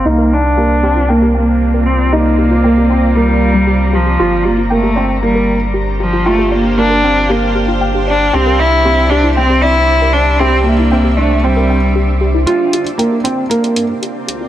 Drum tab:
HH |----------------|----------------|----------------|----------------|

HH |----------------|----------------|x-xxx-x-xxx-x-x-|